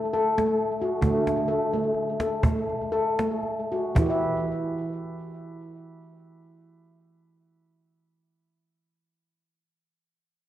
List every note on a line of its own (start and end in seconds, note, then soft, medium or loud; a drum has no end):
0.00 0.99 D3 medium
0.00 0.16 A3 medium
0.14 0.38 A4 medium
0.38 0.82 A3 medium
0.38 cajon slap soft
0.82 1.03 F#4 medium
1.02 3.92 D3 medium
1.02 1.48 A3 medium
1.02 cajon bass medium
1.27 cajon slap soft
1.48 1.73 A4 medium
1.73 2.20 A3 medium
1.73 cajon slap soft
1.94 cajon slap soft
2.20 2.43 A4 medium
2.20 cajon slap soft
2.43 2.92 A3 medium
2.43 cajon bass medium
2.70 cajon slap soft
2.92 3.19 A4 medium
3.19 3.72 A3 medium
3.19 cajon slap soft
3.43 cajon slap soft
3.72 3.97 F#4 medium
3.95 8.50 E3 medium
3.95 8.53 E4 medium
3.95 cajon bass medium
4.02 8.57 G4 medium
4.06 8.61 B4 medium
4.06 8.65 E5 medium